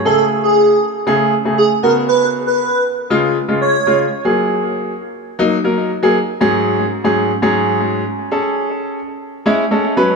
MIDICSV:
0, 0, Header, 1, 3, 480
1, 0, Start_track
1, 0, Tempo, 508475
1, 50, Time_signature, 4, 2, 24, 8
1, 9589, End_track
2, 0, Start_track
2, 0, Title_t, "Digital synth lead"
2, 0, Program_c, 0, 84
2, 50, Note_on_c, 0, 69, 107
2, 208, Note_off_c, 0, 69, 0
2, 410, Note_on_c, 0, 68, 77
2, 749, Note_off_c, 0, 68, 0
2, 1490, Note_on_c, 0, 68, 84
2, 1569, Note_off_c, 0, 68, 0
2, 1728, Note_on_c, 0, 70, 73
2, 1808, Note_off_c, 0, 70, 0
2, 1968, Note_on_c, 0, 71, 109
2, 2127, Note_off_c, 0, 71, 0
2, 2329, Note_on_c, 0, 71, 83
2, 2668, Note_off_c, 0, 71, 0
2, 3412, Note_on_c, 0, 73, 83
2, 3749, Note_off_c, 0, 73, 0
2, 9589, End_track
3, 0, Start_track
3, 0, Title_t, "Grand piano"
3, 0, Program_c, 1, 0
3, 48, Note_on_c, 1, 49, 83
3, 50, Note_on_c, 1, 57, 78
3, 53, Note_on_c, 1, 68, 94
3, 681, Note_off_c, 1, 49, 0
3, 682, Note_off_c, 1, 57, 0
3, 683, Note_off_c, 1, 68, 0
3, 1007, Note_on_c, 1, 49, 93
3, 1008, Note_on_c, 1, 57, 88
3, 1012, Note_on_c, 1, 68, 106
3, 1245, Note_off_c, 1, 49, 0
3, 1246, Note_off_c, 1, 57, 0
3, 1248, Note_off_c, 1, 68, 0
3, 1371, Note_on_c, 1, 49, 71
3, 1373, Note_on_c, 1, 57, 71
3, 1375, Note_on_c, 1, 68, 79
3, 1608, Note_off_c, 1, 49, 0
3, 1608, Note_off_c, 1, 57, 0
3, 1609, Note_off_c, 1, 68, 0
3, 1728, Note_on_c, 1, 49, 73
3, 1729, Note_on_c, 1, 59, 72
3, 1732, Note_on_c, 1, 66, 82
3, 2497, Note_off_c, 1, 49, 0
3, 2498, Note_off_c, 1, 59, 0
3, 2499, Note_off_c, 1, 66, 0
3, 2929, Note_on_c, 1, 49, 95
3, 2930, Note_on_c, 1, 56, 83
3, 2934, Note_on_c, 1, 65, 100
3, 3166, Note_off_c, 1, 49, 0
3, 3167, Note_off_c, 1, 56, 0
3, 3169, Note_off_c, 1, 65, 0
3, 3288, Note_on_c, 1, 49, 71
3, 3290, Note_on_c, 1, 56, 65
3, 3291, Note_on_c, 1, 65, 81
3, 3526, Note_off_c, 1, 49, 0
3, 3527, Note_off_c, 1, 56, 0
3, 3528, Note_off_c, 1, 65, 0
3, 3650, Note_on_c, 1, 49, 76
3, 3652, Note_on_c, 1, 56, 67
3, 3655, Note_on_c, 1, 65, 84
3, 3808, Note_off_c, 1, 49, 0
3, 3809, Note_off_c, 1, 56, 0
3, 3810, Note_off_c, 1, 65, 0
3, 4008, Note_on_c, 1, 54, 83
3, 4010, Note_on_c, 1, 58, 77
3, 4013, Note_on_c, 1, 68, 92
3, 4641, Note_off_c, 1, 54, 0
3, 4642, Note_off_c, 1, 58, 0
3, 4643, Note_off_c, 1, 68, 0
3, 5087, Note_on_c, 1, 54, 101
3, 5089, Note_on_c, 1, 58, 92
3, 5092, Note_on_c, 1, 63, 111
3, 5246, Note_off_c, 1, 54, 0
3, 5248, Note_off_c, 1, 58, 0
3, 5249, Note_off_c, 1, 63, 0
3, 5326, Note_on_c, 1, 54, 87
3, 5329, Note_on_c, 1, 58, 78
3, 5331, Note_on_c, 1, 70, 93
3, 5565, Note_off_c, 1, 54, 0
3, 5567, Note_off_c, 1, 58, 0
3, 5568, Note_off_c, 1, 70, 0
3, 5689, Note_on_c, 1, 54, 101
3, 5691, Note_on_c, 1, 58, 94
3, 5694, Note_on_c, 1, 68, 109
3, 5810, Note_off_c, 1, 54, 0
3, 5811, Note_off_c, 1, 58, 0
3, 5812, Note_off_c, 1, 68, 0
3, 6048, Note_on_c, 1, 44, 99
3, 6050, Note_on_c, 1, 54, 94
3, 6052, Note_on_c, 1, 61, 93
3, 6052, Note_on_c, 1, 68, 109
3, 6444, Note_off_c, 1, 44, 0
3, 6445, Note_off_c, 1, 54, 0
3, 6446, Note_off_c, 1, 61, 0
3, 6446, Note_off_c, 1, 68, 0
3, 6648, Note_on_c, 1, 44, 91
3, 6649, Note_on_c, 1, 54, 81
3, 6650, Note_on_c, 1, 61, 84
3, 6652, Note_on_c, 1, 68, 104
3, 6886, Note_off_c, 1, 44, 0
3, 6887, Note_off_c, 1, 54, 0
3, 6887, Note_off_c, 1, 61, 0
3, 6888, Note_off_c, 1, 68, 0
3, 7006, Note_on_c, 1, 44, 96
3, 7008, Note_on_c, 1, 54, 89
3, 7009, Note_on_c, 1, 61, 91
3, 7010, Note_on_c, 1, 68, 108
3, 7561, Note_off_c, 1, 44, 0
3, 7562, Note_off_c, 1, 54, 0
3, 7562, Note_off_c, 1, 61, 0
3, 7563, Note_off_c, 1, 68, 0
3, 7848, Note_on_c, 1, 68, 84
3, 7850, Note_on_c, 1, 61, 78
3, 7853, Note_on_c, 1, 69, 91
3, 8481, Note_off_c, 1, 68, 0
3, 8482, Note_off_c, 1, 61, 0
3, 8483, Note_off_c, 1, 69, 0
3, 8927, Note_on_c, 1, 56, 102
3, 8930, Note_on_c, 1, 61, 89
3, 8933, Note_on_c, 1, 64, 107
3, 9087, Note_off_c, 1, 56, 0
3, 9088, Note_off_c, 1, 61, 0
3, 9090, Note_off_c, 1, 64, 0
3, 9165, Note_on_c, 1, 56, 86
3, 9168, Note_on_c, 1, 61, 83
3, 9171, Note_on_c, 1, 69, 92
3, 9397, Note_off_c, 1, 61, 0
3, 9405, Note_off_c, 1, 56, 0
3, 9407, Note_off_c, 1, 69, 0
3, 9409, Note_on_c, 1, 54, 90
3, 9411, Note_on_c, 1, 61, 88
3, 9414, Note_on_c, 1, 71, 101
3, 9589, Note_off_c, 1, 54, 0
3, 9589, Note_off_c, 1, 61, 0
3, 9589, Note_off_c, 1, 71, 0
3, 9589, End_track
0, 0, End_of_file